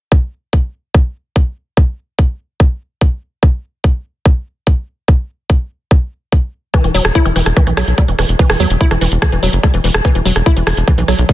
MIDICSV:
0, 0, Header, 1, 4, 480
1, 0, Start_track
1, 0, Key_signature, 1, "minor"
1, 0, Tempo, 413793
1, 136, Time_signature, 4, 2, 24, 8
1, 13144, End_track
2, 0, Start_track
2, 0, Title_t, "Synth arpeggio sound"
2, 0, Program_c, 0, 84
2, 7816, Note_on_c, 0, 52, 96
2, 7923, Note_off_c, 0, 52, 0
2, 7936, Note_on_c, 0, 52, 76
2, 8050, Note_off_c, 0, 52, 0
2, 8056, Note_on_c, 0, 54, 99
2, 8134, Note_off_c, 0, 54, 0
2, 8296, Note_on_c, 0, 64, 103
2, 8410, Note_off_c, 0, 64, 0
2, 8416, Note_on_c, 0, 52, 75
2, 8463, Note_off_c, 0, 52, 0
2, 8536, Note_on_c, 0, 52, 80
2, 8583, Note_off_c, 0, 52, 0
2, 8776, Note_on_c, 0, 52, 86
2, 8823, Note_off_c, 0, 52, 0
2, 8896, Note_on_c, 0, 52, 75
2, 9010, Note_off_c, 0, 52, 0
2, 9016, Note_on_c, 0, 54, 106
2, 9094, Note_off_c, 0, 54, 0
2, 9256, Note_on_c, 0, 55, 78
2, 9334, Note_off_c, 0, 55, 0
2, 9376, Note_on_c, 0, 52, 75
2, 9423, Note_off_c, 0, 52, 0
2, 9496, Note_on_c, 0, 52, 79
2, 9543, Note_off_c, 0, 52, 0
2, 9736, Note_on_c, 0, 52, 101
2, 9842, Note_off_c, 0, 52, 0
2, 9856, Note_on_c, 0, 52, 73
2, 9970, Note_off_c, 0, 52, 0
2, 9976, Note_on_c, 0, 54, 103
2, 10054, Note_off_c, 0, 54, 0
2, 10216, Note_on_c, 0, 64, 109
2, 10330, Note_off_c, 0, 64, 0
2, 10336, Note_on_c, 0, 52, 73
2, 10383, Note_off_c, 0, 52, 0
2, 10456, Note_on_c, 0, 52, 76
2, 10503, Note_off_c, 0, 52, 0
2, 10696, Note_on_c, 0, 52, 82
2, 10743, Note_off_c, 0, 52, 0
2, 10816, Note_on_c, 0, 52, 79
2, 10930, Note_off_c, 0, 52, 0
2, 10936, Note_on_c, 0, 54, 108
2, 11014, Note_off_c, 0, 54, 0
2, 11176, Note_on_c, 0, 55, 78
2, 11254, Note_off_c, 0, 55, 0
2, 11296, Note_on_c, 0, 52, 80
2, 11343, Note_off_c, 0, 52, 0
2, 11415, Note_on_c, 0, 52, 82
2, 11463, Note_off_c, 0, 52, 0
2, 11656, Note_on_c, 0, 52, 103
2, 11761, Note_off_c, 0, 52, 0
2, 11775, Note_on_c, 0, 52, 76
2, 11890, Note_off_c, 0, 52, 0
2, 11895, Note_on_c, 0, 54, 99
2, 11974, Note_off_c, 0, 54, 0
2, 12135, Note_on_c, 0, 64, 108
2, 12250, Note_off_c, 0, 64, 0
2, 12256, Note_on_c, 0, 52, 77
2, 12303, Note_off_c, 0, 52, 0
2, 12376, Note_on_c, 0, 52, 80
2, 12423, Note_off_c, 0, 52, 0
2, 12616, Note_on_c, 0, 52, 87
2, 12663, Note_off_c, 0, 52, 0
2, 12735, Note_on_c, 0, 52, 76
2, 12850, Note_off_c, 0, 52, 0
2, 12855, Note_on_c, 0, 54, 105
2, 12934, Note_off_c, 0, 54, 0
2, 13095, Note_on_c, 0, 55, 82
2, 13144, Note_off_c, 0, 55, 0
2, 13144, End_track
3, 0, Start_track
3, 0, Title_t, "Analog synth bass"
3, 0, Program_c, 1, 38
3, 7936, Note_on_c, 1, 28, 87
3, 8009, Note_off_c, 1, 28, 0
3, 8056, Note_on_c, 1, 28, 97
3, 8129, Note_off_c, 1, 28, 0
3, 8176, Note_on_c, 1, 28, 89
3, 8249, Note_off_c, 1, 28, 0
3, 8415, Note_on_c, 1, 28, 92
3, 8489, Note_off_c, 1, 28, 0
3, 8535, Note_on_c, 1, 28, 97
3, 8609, Note_off_c, 1, 28, 0
3, 8655, Note_on_c, 1, 28, 92
3, 8729, Note_off_c, 1, 28, 0
3, 8896, Note_on_c, 1, 35, 84
3, 8969, Note_off_c, 1, 35, 0
3, 9016, Note_on_c, 1, 35, 101
3, 9089, Note_off_c, 1, 35, 0
3, 9136, Note_on_c, 1, 35, 87
3, 9209, Note_off_c, 1, 35, 0
3, 9375, Note_on_c, 1, 28, 86
3, 9449, Note_off_c, 1, 28, 0
3, 9496, Note_on_c, 1, 28, 104
3, 9569, Note_off_c, 1, 28, 0
3, 9616, Note_on_c, 1, 28, 90
3, 9689, Note_off_c, 1, 28, 0
3, 9856, Note_on_c, 1, 28, 89
3, 9929, Note_off_c, 1, 28, 0
3, 9975, Note_on_c, 1, 40, 95
3, 10049, Note_off_c, 1, 40, 0
3, 10095, Note_on_c, 1, 28, 91
3, 10169, Note_off_c, 1, 28, 0
3, 10336, Note_on_c, 1, 28, 90
3, 10409, Note_off_c, 1, 28, 0
3, 10455, Note_on_c, 1, 28, 96
3, 10529, Note_off_c, 1, 28, 0
3, 10576, Note_on_c, 1, 28, 96
3, 10649, Note_off_c, 1, 28, 0
3, 10816, Note_on_c, 1, 28, 83
3, 10889, Note_off_c, 1, 28, 0
3, 10936, Note_on_c, 1, 28, 101
3, 11009, Note_off_c, 1, 28, 0
3, 11056, Note_on_c, 1, 30, 88
3, 11129, Note_off_c, 1, 30, 0
3, 11296, Note_on_c, 1, 28, 92
3, 11369, Note_off_c, 1, 28, 0
3, 11416, Note_on_c, 1, 28, 105
3, 11489, Note_off_c, 1, 28, 0
3, 11536, Note_on_c, 1, 28, 91
3, 11609, Note_off_c, 1, 28, 0
3, 11776, Note_on_c, 1, 28, 86
3, 11849, Note_off_c, 1, 28, 0
3, 11896, Note_on_c, 1, 28, 97
3, 11969, Note_off_c, 1, 28, 0
3, 12016, Note_on_c, 1, 28, 88
3, 12089, Note_off_c, 1, 28, 0
3, 12256, Note_on_c, 1, 28, 91
3, 12329, Note_off_c, 1, 28, 0
3, 12376, Note_on_c, 1, 28, 99
3, 12449, Note_off_c, 1, 28, 0
3, 12496, Note_on_c, 1, 28, 94
3, 12569, Note_off_c, 1, 28, 0
3, 12736, Note_on_c, 1, 35, 90
3, 12809, Note_off_c, 1, 35, 0
3, 12856, Note_on_c, 1, 35, 98
3, 12929, Note_off_c, 1, 35, 0
3, 12976, Note_on_c, 1, 35, 94
3, 13049, Note_off_c, 1, 35, 0
3, 13144, End_track
4, 0, Start_track
4, 0, Title_t, "Drums"
4, 136, Note_on_c, 9, 36, 119
4, 252, Note_off_c, 9, 36, 0
4, 616, Note_on_c, 9, 36, 112
4, 732, Note_off_c, 9, 36, 0
4, 1096, Note_on_c, 9, 36, 116
4, 1212, Note_off_c, 9, 36, 0
4, 1576, Note_on_c, 9, 36, 116
4, 1692, Note_off_c, 9, 36, 0
4, 2056, Note_on_c, 9, 36, 119
4, 2172, Note_off_c, 9, 36, 0
4, 2536, Note_on_c, 9, 36, 112
4, 2652, Note_off_c, 9, 36, 0
4, 3016, Note_on_c, 9, 36, 118
4, 3132, Note_off_c, 9, 36, 0
4, 3496, Note_on_c, 9, 36, 114
4, 3612, Note_off_c, 9, 36, 0
4, 3976, Note_on_c, 9, 36, 119
4, 4092, Note_off_c, 9, 36, 0
4, 4456, Note_on_c, 9, 36, 120
4, 4572, Note_off_c, 9, 36, 0
4, 4936, Note_on_c, 9, 36, 121
4, 5052, Note_off_c, 9, 36, 0
4, 5416, Note_on_c, 9, 36, 119
4, 5532, Note_off_c, 9, 36, 0
4, 5896, Note_on_c, 9, 36, 120
4, 6012, Note_off_c, 9, 36, 0
4, 6376, Note_on_c, 9, 36, 119
4, 6492, Note_off_c, 9, 36, 0
4, 6856, Note_on_c, 9, 36, 125
4, 6972, Note_off_c, 9, 36, 0
4, 7336, Note_on_c, 9, 36, 116
4, 7452, Note_off_c, 9, 36, 0
4, 7816, Note_on_c, 9, 36, 120
4, 7816, Note_on_c, 9, 37, 38
4, 7816, Note_on_c, 9, 42, 65
4, 7932, Note_off_c, 9, 36, 0
4, 7932, Note_off_c, 9, 37, 0
4, 7932, Note_off_c, 9, 42, 0
4, 7936, Note_on_c, 9, 42, 63
4, 8052, Note_off_c, 9, 42, 0
4, 8056, Note_on_c, 9, 46, 105
4, 8172, Note_off_c, 9, 46, 0
4, 8176, Note_on_c, 9, 37, 79
4, 8176, Note_on_c, 9, 42, 62
4, 8292, Note_off_c, 9, 37, 0
4, 8292, Note_off_c, 9, 42, 0
4, 8296, Note_on_c, 9, 36, 112
4, 8296, Note_on_c, 9, 42, 62
4, 8412, Note_off_c, 9, 36, 0
4, 8412, Note_off_c, 9, 42, 0
4, 8416, Note_on_c, 9, 42, 62
4, 8532, Note_off_c, 9, 42, 0
4, 8536, Note_on_c, 9, 46, 102
4, 8652, Note_off_c, 9, 46, 0
4, 8656, Note_on_c, 9, 37, 42
4, 8656, Note_on_c, 9, 42, 65
4, 8772, Note_off_c, 9, 37, 0
4, 8772, Note_off_c, 9, 42, 0
4, 8776, Note_on_c, 9, 36, 117
4, 8776, Note_on_c, 9, 42, 64
4, 8892, Note_off_c, 9, 36, 0
4, 8892, Note_off_c, 9, 42, 0
4, 8896, Note_on_c, 9, 42, 58
4, 9012, Note_off_c, 9, 42, 0
4, 9016, Note_on_c, 9, 37, 86
4, 9016, Note_on_c, 9, 46, 108
4, 9132, Note_off_c, 9, 37, 0
4, 9132, Note_off_c, 9, 46, 0
4, 9136, Note_on_c, 9, 42, 65
4, 9252, Note_off_c, 9, 42, 0
4, 9256, Note_on_c, 9, 36, 115
4, 9256, Note_on_c, 9, 42, 63
4, 9372, Note_off_c, 9, 36, 0
4, 9372, Note_off_c, 9, 42, 0
4, 9376, Note_on_c, 9, 42, 60
4, 9492, Note_off_c, 9, 42, 0
4, 9496, Note_on_c, 9, 37, 42
4, 9496, Note_on_c, 9, 46, 110
4, 9612, Note_off_c, 9, 37, 0
4, 9612, Note_off_c, 9, 46, 0
4, 9616, Note_on_c, 9, 42, 64
4, 9732, Note_off_c, 9, 42, 0
4, 9736, Note_on_c, 9, 36, 112
4, 9736, Note_on_c, 9, 42, 65
4, 9852, Note_off_c, 9, 36, 0
4, 9852, Note_off_c, 9, 42, 0
4, 9856, Note_on_c, 9, 37, 80
4, 9856, Note_on_c, 9, 46, 62
4, 9972, Note_off_c, 9, 37, 0
4, 9972, Note_off_c, 9, 46, 0
4, 9976, Note_on_c, 9, 46, 100
4, 10092, Note_off_c, 9, 46, 0
4, 10096, Note_on_c, 9, 42, 66
4, 10212, Note_off_c, 9, 42, 0
4, 10216, Note_on_c, 9, 36, 107
4, 10216, Note_on_c, 9, 42, 64
4, 10332, Note_off_c, 9, 36, 0
4, 10332, Note_off_c, 9, 42, 0
4, 10336, Note_on_c, 9, 37, 39
4, 10336, Note_on_c, 9, 42, 62
4, 10452, Note_off_c, 9, 37, 0
4, 10452, Note_off_c, 9, 42, 0
4, 10456, Note_on_c, 9, 46, 99
4, 10572, Note_off_c, 9, 46, 0
4, 10576, Note_on_c, 9, 42, 68
4, 10692, Note_off_c, 9, 42, 0
4, 10696, Note_on_c, 9, 36, 117
4, 10696, Note_on_c, 9, 37, 83
4, 10696, Note_on_c, 9, 42, 67
4, 10812, Note_off_c, 9, 36, 0
4, 10812, Note_off_c, 9, 37, 0
4, 10812, Note_off_c, 9, 42, 0
4, 10816, Note_on_c, 9, 42, 63
4, 10932, Note_off_c, 9, 42, 0
4, 10936, Note_on_c, 9, 46, 105
4, 11052, Note_off_c, 9, 46, 0
4, 11056, Note_on_c, 9, 42, 67
4, 11172, Note_off_c, 9, 42, 0
4, 11176, Note_on_c, 9, 36, 109
4, 11176, Note_on_c, 9, 37, 38
4, 11176, Note_on_c, 9, 42, 65
4, 11292, Note_off_c, 9, 36, 0
4, 11292, Note_off_c, 9, 37, 0
4, 11292, Note_off_c, 9, 42, 0
4, 11296, Note_on_c, 9, 42, 64
4, 11412, Note_off_c, 9, 42, 0
4, 11416, Note_on_c, 9, 46, 102
4, 11532, Note_off_c, 9, 46, 0
4, 11536, Note_on_c, 9, 37, 84
4, 11536, Note_on_c, 9, 42, 62
4, 11652, Note_off_c, 9, 37, 0
4, 11652, Note_off_c, 9, 42, 0
4, 11656, Note_on_c, 9, 36, 107
4, 11656, Note_on_c, 9, 42, 67
4, 11772, Note_off_c, 9, 36, 0
4, 11772, Note_off_c, 9, 42, 0
4, 11776, Note_on_c, 9, 42, 69
4, 11892, Note_off_c, 9, 42, 0
4, 11896, Note_on_c, 9, 46, 101
4, 12012, Note_off_c, 9, 46, 0
4, 12016, Note_on_c, 9, 37, 39
4, 12016, Note_on_c, 9, 42, 69
4, 12132, Note_off_c, 9, 37, 0
4, 12132, Note_off_c, 9, 42, 0
4, 12136, Note_on_c, 9, 36, 106
4, 12136, Note_on_c, 9, 42, 69
4, 12252, Note_off_c, 9, 36, 0
4, 12252, Note_off_c, 9, 42, 0
4, 12256, Note_on_c, 9, 42, 67
4, 12372, Note_off_c, 9, 42, 0
4, 12376, Note_on_c, 9, 37, 72
4, 12376, Note_on_c, 9, 46, 96
4, 12492, Note_off_c, 9, 37, 0
4, 12492, Note_off_c, 9, 46, 0
4, 12496, Note_on_c, 9, 42, 69
4, 12612, Note_off_c, 9, 42, 0
4, 12616, Note_on_c, 9, 36, 111
4, 12616, Note_on_c, 9, 42, 69
4, 12732, Note_off_c, 9, 36, 0
4, 12732, Note_off_c, 9, 42, 0
4, 12736, Note_on_c, 9, 42, 61
4, 12852, Note_off_c, 9, 42, 0
4, 12856, Note_on_c, 9, 37, 41
4, 12856, Note_on_c, 9, 46, 102
4, 12972, Note_off_c, 9, 37, 0
4, 12972, Note_off_c, 9, 46, 0
4, 12976, Note_on_c, 9, 42, 67
4, 13092, Note_off_c, 9, 42, 0
4, 13096, Note_on_c, 9, 36, 110
4, 13096, Note_on_c, 9, 42, 68
4, 13144, Note_off_c, 9, 36, 0
4, 13144, Note_off_c, 9, 42, 0
4, 13144, End_track
0, 0, End_of_file